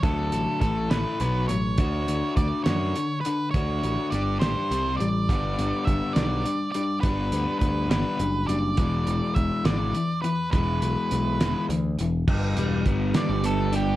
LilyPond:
<<
  \new Staff \with { instrumentName = "Lead electric guitar" } { \time 6/8 \key g \lydian \tempo 4. = 69 a'4 a'8 b'4 cis''8~ | cis''4 d''8 cis''4 b'8 | cis''4 d''8 c''4 d''8~ | d''4 e''8 d''4 d''8 |
b'4 b'8 b'4 d''8~ | d''4 e''8 d''4 b'8 | b'2 r4 | r4. d''8 a'8 g'8 | }
  \new Staff \with { instrumentName = "Overdriven electric guitar" } { \clef bass \time 6/8 \key g \lydian <d fis a>4 <a, e a>8 <a, e a>8 <b, fis b>8 <b, fis>8 | <d d' fis'>4. <d d' fis'>8 <d d'>8 <d d'>8 | <d d' fis'>4 <g d' g'>8 <g d' g'>8 <c g c'>8 <c g>8 | <g b d'>4. <g b d'>8 <g d'>8 <g d'>8 |
<g b d'>4. <g b d'>8 <g d'>8 <g d'>8 | <e, e gis>4. <e, e gis>8 <e, e>8 <e, e>8 | <e, e gis>4. <e, e gis>8 <e, e>8 <e, e>8 | g,8 g8 b8 g8 b8 d'8 | }
  \new Staff \with { instrumentName = "Picked electric bass" } { \clef bass \time 6/8 \key g \lydian d,8 a,,16 r16 a,,8 a,,16 r16 b,,8 a,,8 | d,8 d,16 r16 d,16 r16 fis,8 r4 | d,8 a,,16 r16 g,,8 a,,16 r16 c,8 a,,8 | g,,8 g,,16 r16 g,,16 r16 b,,8 r4 |
g,,8 d,16 r16 d,8 g,,16 r16 fis,,8 fis,,8 | e,,8 e,,16 r16 e,,16 r16 gis,,8 r4 | e,,8 b,,16 r16 b,,8 e,,16 r16 d,8 e,,8 | g,,8 e,,8 g,,8 r16 g,,4~ g,,16 | }
  \new DrumStaff \with { instrumentName = "Drums" } \drummode { \time 6/8 <hh bd>8 hh8 <hh bd>8 <hh sn>8 hh8 hh8 | <hh bd>8 hh8 <hh bd>8 <hh sn>8 hh8 hh8 | <hh bd>8 hh8 hh8 <hh sn>8 hh8 hh8 | <hh bd>8 hh8 <hh bd>8 <hh sn>8 hh8 hh8 |
<hh bd>8 hh8 <hh bd>8 <hh sn>8 hh8 hh8 | <hh bd>8 hh8 <hh bd>8 <hh sn>8 hh8 hh8 | <hh bd>8 hh8 hh8 <hh sn>8 hh8 hh8 | <cymc bd>8 hh8 <hh bd>8 <hh sn>8 hh8 hh8 | }
>>